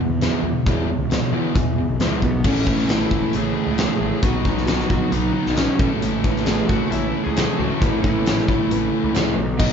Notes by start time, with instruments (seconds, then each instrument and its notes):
Already playing: reed electric piano G#4 B4 F#5
0.00 overdriven electric guitar E2 B2
0.10 picked electric bass E2
0.21 overdriven electric guitar E2 B2 E3, reed electric piano G#4 B4 E5, snare, closed hi-hat
0.43 picked electric bass E2, overdriven electric guitar E2 B2
0.66 picked electric bass E2, overdriven electric guitar E2 B2 E3, reed electric piano G#4 B4 C#5, kick, closed hi-hat
0.89 overdriven electric guitar E2 B2
0.99 picked electric bass C#2
1.10 overdriven electric guitar E2 B2, reed electric piano G#4 B4 C#5, snare, closed hi-hat
1.32 overdriven electric guitar E2 B2 E3, picked electric bass E3, reed electric piano B5
1.55 overdriven electric guitar E2 B2, picked electric bass E2, reed electric piano G#4 B4 E5 G#5, kick, closed hi-hat
1.78 overdriven electric guitar E2 B2
1.89 picked electric bass B1
2.00 picked electric bass C#2, overdriven electric guitar E2 B2 E3, reed electric piano G#4 B4 E5, snare, closed hi-hat
2.22 picked electric bass B1, overdriven electric guitar E2 B2, electric slide guitar B3, kick
2.44 picked electric bass A1, overdriven electric guitar A2 E3 A3 C#4 E4 A4, electric slide guitar C#4, reed electric piano E4 A4 C#5, kick, crash
2.67 picked electric bass A1, kick
2.79 snare
2.89 electric slide guitar E4, reed electric piano E4 A4 C#5, snare, closed hi-hat
3.11 picked electric bass A1, kick
3.33 picked electric bass A1, overdriven electric guitar A2 A3 C#4 E4 A4, reed electric piano A3 E4 C#5, electric slide guitar G#4, closed hi-hat
3.67 picked electric bass C#2
3.77 reed electric piano A3 E4 C#5, snare, closed hi-hat
4.00 picked electric bass A1, overdriven electric guitar A2 E3 A3 C#4 A4
4.22 picked electric bass B1, overdriven electric guitar B2 D#3 F#3 B3 D#4 F#4 B4, reed electric piano D#4 F#4 B4, electric slide guitar F#4, kick, closed hi-hat
4.45 picked electric bass B1, kick
4.58 snare
4.67 reed electric piano D#4 F#4 B4, electric slide guitar F#4, snare, closed hi-hat
4.80 snare
4.90 picked electric bass B1, electric slide guitar F#4, kick
5.10 picked electric bass B1, overdriven electric guitar B2 D#3 F#3, reed electric piano D#4 F#4 B4, electric slide guitar D#4, closed hi-hat
5.14 overdriven electric guitar B3 D#4 B4
5.34 electric slide guitar D#4
5.46 picked electric bass B1, snare
5.56 electric slide guitar C#4, reed electric piano D#4 F#4 B4, snare, closed hi-hat
5.79 picked electric bass A1, overdriven electric guitar A2 E3 A3 C#4 E4, reed electric piano C#4 A4 B4, kick
5.83 overdriven electric guitar A4
6.02 picked electric bass A1, closed hi-hat
6.24 picked electric bass A1, kick
6.36 snare
6.45 reed electric piano C#4 A4 B4, electric slide guitar G#4, snare, clap, closed hi-hat
6.68 picked electric bass A1, overdriven electric guitar E4 A4, electric slide guitar F#4, kick
6.72 overdriven electric guitar A2 A3 C#4
6.90 picked electric bass A1, electric slide guitar E4, closed hi-hat
6.94 reed electric piano C#4 A4 C#5
7.23 picked electric bass C#2, electric slide guitar G#4
7.37 overdriven electric guitar A2 E3 A3 C#4 A4, reed electric piano C#4 A4 B4, snare, clap, closed hi-hat
7.58 picked electric bass C#2, overdriven electric guitar A2 E3 A3 C#4 E4, electric slide guitar F#4
7.62 overdriven electric guitar A4
7.79 picked electric bass A1, electric slide guitar E4, kick, closed hi-hat
7.83 reed electric piano C#4 A4 C#5
8.03 picked electric bass A1, electric slide guitar E4, kick
8.26 reed electric piano C#4 A4 C#5, snare, clap, closed hi-hat
8.39 snare
8.48 picked electric bass A1, overdriven electric guitar A2 A3 C#4 E4 A4, kick
8.71 picked electric bass A1, reed electric piano C#4 A4 B4, closed hi-hat
9.04 picked electric bass C#2
9.14 picked electric bass C#2, overdriven electric guitar A2 E3 A3 C#4 A4, reed electric piano C#4 A4 B4, snare, clap, closed hi-hat
9.37 picked electric bass B1
9.59 picked electric bass B1, overdriven electric guitar B2 F#3 B3 D#4 F#4, reed electric piano D#4 F#4 B4 D#5, electric slide guitar D#5, kick, crash